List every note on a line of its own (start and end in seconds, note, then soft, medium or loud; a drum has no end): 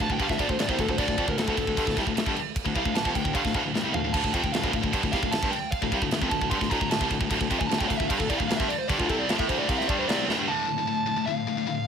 0.00 0.09 D2 medium
0.00 0.09 A2 medium
0.00 0.10 A5 loud
0.00 crash medium
0.10 0.19 D2 medium
0.10 0.18 D2 medium
0.10 0.19 A2 medium
0.10 0.20 G5 medium
0.10 kick medium
0.19 0.28 G2 loud
0.19 0.29 G2 medium
0.19 0.28 D3 loud
0.19 0.31 F5 medium
0.19 kick medium
0.19 crash medium
0.29 0.37 D2 medium
0.29 0.38 D2 medium
0.29 0.38 A2 medium
0.29 0.40 E5 medium
0.29 kick medium
0.29 snare soft
0.38 0.48 D2 medium
0.38 0.48 A2 loud
0.38 0.50 D5 medium
0.38 kick medium
0.38 crash medium
0.49 0.57 D2 medium
0.49 0.58 D2 medium
0.49 0.58 A2 medium
0.49 0.59 C5 medium
0.49 kick medium
0.59 0.68 D2 medium
0.59 0.69 A2 medium
0.59 0.69 D5 medium
0.59 snare loud
0.59 crash medium
0.69 0.78 C2 medium
0.69 0.78 C3 medium
0.69 0.78 G3 loud
0.69 0.79 C5 medium
0.69 kick loud
0.78 0.87 D2 medium
0.78 0.88 D2 medium
0.78 0.88 A2 medium
0.78 0.89 A4 medium
0.78 kick medium
0.78 crash medium
0.89 0.98 D2 medium
0.89 0.97 D2 medium
0.89 0.98 A2 medium
0.89 0.98 C5 medium
0.89 kick medium
0.98 1.07 D2 medium
0.98 1.08 D2 loud
0.98 1.08 A2 loud
0.98 1.26 D5 medium
0.98 kick loud
0.98 crash medium
1.08 1.17 D2 medium
1.08 1.18 A2 medium
1.08 kick medium
1.17 1.27 F2 medium
1.17 1.27 C3 loud
1.17 kick medium
1.17 crash medium
1.28 1.37 D2 medium
1.28 1.36 D2 medium
1.28 1.37 A2 medium
1.28 1.38 A#4 medium
1.28 kick medium
1.37 1.46 D2 medium
1.37 1.47 D2 medium
1.37 1.46 A2 medium
1.37 1.93 A4 medium
1.37 snare loud
1.37 crash medium
1.47 1.56 D2 loud
1.47 1.57 D2 loud
1.47 1.57 A2 loud
1.47 kick loud
1.57 1.66 D2 medium
1.57 1.66 A2 medium
1.57 kick medium
1.57 crash medium
1.67 1.76 D2 medium
1.67 1.77 A2 medium
1.67 kick medium
1.77 1.85 G2 loud
1.77 1.86 G2 medium
1.77 1.85 D3 loud
1.77 kick loud
1.77 crash medium
1.86 1.96 D2 medium
1.86 1.96 A2 medium
1.86 kick loud
1.86 snare soft
1.96 2.06 C2 loud
1.96 2.06 C3 medium
1.96 2.06 G3 loud
1.96 kick medium
1.96 snare soft
1.96 crash medium
2.06 2.14 D2 medium
2.06 2.15 D2 medium
2.06 2.14 A2 medium
2.06 kick medium
2.15 2.25 D2 medium
2.15 2.26 A2 medium
2.15 snare loud
2.15 crash medium
2.26 2.35 G2 medium
2.26 2.36 D3 loud
2.26 kick loud
2.36 crash medium
2.56 kick loud
2.56 crash medium
2.65 2.74 D2 medium
2.65 2.75 D2 medium
2.65 2.75 A2 medium
2.65 kick medium
2.75 2.85 C2 medium
2.75 2.84 C3 loud
2.75 2.85 G3 loud
2.75 2.95 F5 medium
2.75 kick medium
2.75 crash medium
2.85 2.93 D2 medium
2.85 2.94 D2 medium
2.85 2.94 A2 medium
2.85 kick medium
2.94 3.04 D2 medium
2.94 3.05 A2 medium
2.94 3.14 A5 loud
2.94 snare loud
2.94 crash medium
3.05 3.14 F2 medium
3.05 3.14 F2 loud
3.05 3.15 C3 medium
3.05 kick loud
3.15 3.23 D2 medium
3.15 3.24 D2 medium
3.15 3.24 A2 medium
3.15 3.34 G5 loud
3.15 kick medium
3.15 crash medium
3.24 3.33 D2 medium
3.24 3.34 D2 medium
3.24 3.34 A2 medium
3.24 kick medium
3.33 3.43 G2 loud
3.33 3.44 G2 medium
3.33 3.44 D3 loud
3.33 3.54 F5 medium
3.33 kick loud
3.33 crash medium
3.44 3.53 D2 medium
3.44 3.54 D2 medium
3.44 3.53 A2 medium
3.44 kick medium
3.44 snare soft
3.54 3.64 D2 medium
3.54 3.63 D2 medium
3.54 3.64 A2 loud
3.54 kick medium
3.54 crash medium
3.64 3.73 D2 medium
3.64 3.73 A2 medium
3.74 3.83 D2 medium
3.74 3.84 A2 medium
3.74 snare medium
3.84 3.93 C2 medium
3.84 3.93 C3 medium
3.84 3.94 G3 loud
3.94 4.03 D2 medium
3.94 4.03 A2 medium
3.94 4.13 F5 medium
3.94 floor tom medium
4.04 4.13 D2 medium
4.04 4.14 A2 medium
4.13 4.23 D2 loud
4.13 4.23 D2 medium
4.13 4.24 A2 loud
4.13 4.32 A5 loud
4.13 kick loud
4.13 splash medium
4.13 crash medium
4.24 4.33 D2 medium
4.24 4.34 D2 medium
4.24 4.34 A2 medium
4.24 kick medium
4.33 4.43 F2 loud
4.33 4.43 F2 medium
4.33 4.44 C3 loud
4.33 4.52 G5 medium
4.33 kick medium
4.33 crash medium
4.44 4.53 D2 medium
4.44 4.52 D2 medium
4.44 4.52 A2 medium
4.44 kick medium
4.52 4.61 D2 medium
4.52 4.63 D2 medium
4.52 4.62 A2 medium
4.52 4.72 F5 medium
4.52 snare loud
4.52 crash medium
4.62 4.72 D2 loud
4.62 4.73 D2 loud
4.62 4.72 A2 loud
4.62 kick loud
4.73 4.81 D2 medium
4.73 4.82 D2 medium
4.73 4.82 A2 medium
4.73 kick loud
4.73 crash medium
4.82 4.92 D2 medium
4.82 4.93 A2 medium
4.82 kick medium
4.93 5.02 G2 loud
4.93 5.02 G2 medium
4.93 5.03 D3 loud
4.93 kick loud
4.93 crash medium
5.03 5.12 D2 medium
5.03 5.13 A2 medium
5.03 kick medium
5.12 5.22 C2 medium
5.12 5.22 C3 medium
5.12 5.22 G3 loud
5.12 5.32 F5 loud
5.12 kick medium
5.12 snare soft
5.12 crash medium
5.22 5.32 D2 medium
5.22 5.32 A2 medium
5.22 kick medium
5.31 5.42 D2 medium
5.31 5.43 A2 medium
5.31 5.51 A5 loud
5.31 snare loud
5.31 crash medium
5.43 5.52 G2 medium
5.43 5.52 D3 loud
5.43 kick loud
5.51 5.71 G5 loud
5.51 crash medium
5.71 5.91 F5 medium
5.71 kick loud
5.71 crash medium
5.82 5.91 D2 medium
5.82 5.92 A2 medium
5.82 kick medium
5.92 6.01 C2 medium
5.92 6.01 C3 medium
5.92 6.02 G3 loud
5.92 kick medium
5.92 crash medium
6.02 6.11 D2 medium
6.02 6.11 A2 medium
6.02 kick medium
6.11 6.21 D2 medium
6.11 6.22 A2 medium
6.11 snare loud
6.11 crash medium
6.21 6.31 F2 medium
6.21 6.31 F2 loud
6.21 6.31 C3 loud
6.21 kick loud
6.30 6.40 D2 medium
6.30 6.41 D2 medium
6.30 6.41 A2 medium
6.30 6.50 A5 loud
6.30 kick medium
6.30 crash medium
6.41 6.51 D2 medium
6.41 6.50 D2 medium
6.41 6.51 A2 medium
6.41 kick medium
6.50 6.60 G2 loud
6.50 6.60 D3 loud
6.50 6.70 C6 loud
6.50 kick loud
6.50 crash medium
6.61 6.69 D2 medium
6.61 6.70 D2 medium
6.61 6.70 A2 medium
6.61 kick medium
6.61 snare soft
6.70 6.79 D2 medium
6.70 6.80 D2 loud
6.70 6.80 A2 loud
6.70 6.90 A#5 loud
6.70 kick medium
6.70 crash medium
6.81 6.90 D2 medium
6.81 6.90 A2 medium
6.81 kick medium
6.90 7.00 D2 medium
6.90 7.01 A2 medium
6.90 7.02 A5 loud
6.90 snare loud
6.90 crash medium
7.00 7.10 C2 medium
7.00 7.10 C3 medium
7.00 7.10 G3 loud
7.00 kick loud
7.11 7.20 D2 medium
7.11 7.19 D2 medium
7.11 7.20 A2 medium
7.11 kick medium
7.11 crash medium
7.20 7.30 D2 medium
7.20 7.28 D2 medium
7.20 7.29 A2 medium
7.20 kick medium
7.30 7.39 D2 loud
7.30 7.40 D2 medium
7.30 7.39 A2 loud
7.30 kick loud
7.30 crash medium
7.41 7.50 D2 medium
7.41 7.50 A2 medium
7.41 kick medium
7.50 7.59 F2 loud
7.50 7.60 F2 loud
7.50 7.59 C3 loud
7.50 kick medium
7.50 crash medium
7.60 7.68 D2 medium
7.60 7.69 D2 medium
7.60 7.68 A2 medium
7.60 7.67 G#5 medium
7.60 kick medium
7.67 7.77 D2 medium
7.67 7.79 D2 medium
7.67 7.78 A2 medium
7.67 7.79 A5 loud
7.67 crash medium
7.73 snare loud
7.78 7.88 D2 loud
7.78 7.90 D2 loud
7.78 7.88 A2 loud
7.78 7.87 G5 loud
7.78 kick loud
7.88 7.98 D2 medium
7.88 7.99 D2 medium
7.88 7.99 A2 medium
7.88 7.97 F5 loud
7.88 kick medium
7.88 crash medium
7.97 8.09 D2 medium
7.97 8.10 A2 medium
7.97 8.07 E5 medium
7.97 kick medium
8.08 8.18 G2 loud
8.08 8.19 G2 loud
8.08 8.19 D3 loud
8.08 8.19 F5 loud
8.08 kick loud
8.08 crash medium
8.17 8.29 D2 medium
8.17 8.29 A2 medium
8.17 8.28 A4 medium
8.17 kick medium
8.29 8.39 C2 loud
8.29 8.39 C3 medium
8.29 8.39 G3 medium
8.29 8.39 D5 loud
8.29 kick medium
8.29 crash medium
8.37 8.48 D2 medium
8.37 8.49 A2 medium
8.37 8.47 F5 loud
8.37 kick medium
8.48 8.59 D2 medium
8.48 8.59 A2 medium
8.48 8.57 F5 loud
8.48 snare loud
8.48 crash loud
8.57 8.69 G2 medium
8.57 8.69 D3 loud
8.57 8.68 E5 medium
8.57 kick loud
8.68 8.79 D5 loud
8.68 crash medium
8.79 8.88 C5 medium
8.88 8.98 G2 loud
8.88 8.99 G2 medium
8.88 8.99 D3 loud
8.88 8.98 D5 loud
8.88 kick loud
8.88 crash medium
8.98 9.08 D2 loud
8.98 9.09 D2 loud
8.98 9.09 A2 loud
8.98 9.08 F4 medium
8.98 kick medium
9.09 9.28 C2 loud
9.09 9.28 C3 medium
9.09 9.29 G3 loud
9.09 9.29 C4 loud
9.09 9.19 A4 medium
9.09 kick medium
9.09 crash medium
9.19 9.29 D5 medium
9.28 9.38 F2 medium
9.28 9.38 F2 loud
9.28 9.39 C3 loud
9.28 9.39 F5 loud
9.28 snare loud
9.28 crash medium
9.39 9.48 A2 medium
9.39 9.48 A2 loud
9.39 9.48 E3 loud
9.39 9.49 E5 medium
9.39 kick loud
9.48 9.67 D2 loud
9.48 9.68 D2 loud
9.48 9.68 A2 loud
9.48 9.69 D3 loud
9.48 9.58 C5 loud
9.48 kick medium
9.48 crash medium
9.59 9.68 D5 medium
9.68 9.87 C2 loud
9.68 9.87 C3 loud
9.68 9.88 G3 loud
9.68 9.88 C4 loud
9.68 9.78 F5 loud
9.68 kick loud
9.68 crash medium
9.78 9.88 E5 medium
9.78 snare soft
9.88 10.08 G2 medium
9.88 10.07 G2 loud
9.88 10.08 D3 medium
9.88 10.07 G3 loud
9.88 9.98 D5 loud
9.88 kick loud
9.88 crash medium
9.99 10.08 C5 medium
10.07 10.26 C2 loud
10.07 10.27 C3 medium
10.07 10.28 G3 loud
10.07 10.28 C4 loud
10.07 10.20 D5 loud
10.07 snare loud
10.07 crash medium
10.27 10.37 D2 loud
10.27 10.38 A2 loud
10.27 snare medium
10.38 10.47 G2 loud
10.38 10.47 G2 medium
10.38 10.47 D3 loud
10.47 10.66 D2 medium
10.47 10.66 A2 loud
10.47 10.67 D3 loud
10.47 11.30 A5 loud
10.67 10.77 D2 medium
10.67 10.77 A2 medium
10.78 10.86 D2 medium
10.78 10.86 A2 medium
10.87 11.05 D2 medium
10.87 11.05 A2 medium
11.06 11.16 D2 medium
11.06 11.15 A2 medium
11.16 11.26 D2 medium
11.16 11.27 A2 medium
11.26 11.45 D2 medium
11.26 11.46 A2 medium
11.26 11.87 F5 loud
11.47 11.56 D2 medium
11.47 11.56 A2 medium
11.57 11.66 D2 medium
11.57 11.66 A2 medium
11.67 11.85 D2 medium
11.67 11.85 A2 medium